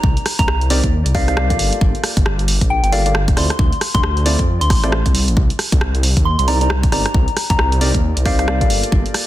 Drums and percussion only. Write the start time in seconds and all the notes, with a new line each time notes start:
0.04 kick
0.17 closed hi-hat
0.26 cross-stick, open hi-hat
0.39 kick, closed hi-hat
0.48 cross-stick
0.61 closed hi-hat
0.70 open hi-hat
0.84 kick, closed hi-hat
1.06 closed hi-hat
1.15 kick, cross-stick, open hi-hat
1.28 cross-stick, closed hi-hat
1.37 cross-stick
1.50 kick, closed hi-hat
1.59 open hi-hat
1.73 closed hi-hat
1.81 kick
1.95 closed hi-hat
2.04 cross-stick, open hi-hat
2.17 kick, closed hi-hat
2.26 cross-stick
2.39 closed hi-hat
2.48 open hi-hat
2.61 kick, closed hi-hat
2.84 closed hi-hat
2.93 open hi-hat
3.06 closed hi-hat
3.15 cross-stick
3.28 kick, closed hi-hat
3.37 cross-stick, open hi-hat
3.50 cross-stick, closed hi-hat
3.59 kick
3.73 closed hi-hat
3.81 cross-stick, open hi-hat
3.95 kick, closed hi-hat
4.03 cross-stick
4.17 closed hi-hat
4.26 open hi-hat
4.39 kick, closed hi-hat
4.61 closed hi-hat
4.70 kick, cross-stick, open hi-hat
4.84 cross-stick, closed hi-hat
4.92 cross-stick
5.06 kick, closed hi-hat
5.15 open hi-hat
5.28 closed hi-hat
5.37 kick
5.50 closed hi-hat
5.59 cross-stick, open hi-hat
5.72 kick, closed hi-hat
5.81 cross-stick
5.95 closed hi-hat
6.03 open hi-hat
6.17 kick, closed hi-hat
6.39 closed hi-hat
6.48 open hi-hat
6.61 closed hi-hat
6.70 cross-stick
6.83 kick, closed hi-hat
6.92 cross-stick, open hi-hat
7.06 cross-stick, closed hi-hat
7.14 kick
7.28 closed hi-hat
7.37 cross-stick, open hi-hat
7.50 kick, closed hi-hat
7.59 cross-stick
7.72 closed hi-hat
7.81 open hi-hat
7.94 kick, closed hi-hat
8.17 closed hi-hat
8.26 kick, cross-stick, open hi-hat
8.39 cross-stick, closed hi-hat
8.48 cross-stick
8.61 kick, closed hi-hat
8.70 open hi-hat
8.83 closed hi-hat
8.92 kick
9.06 closed hi-hat
9.14 cross-stick, open hi-hat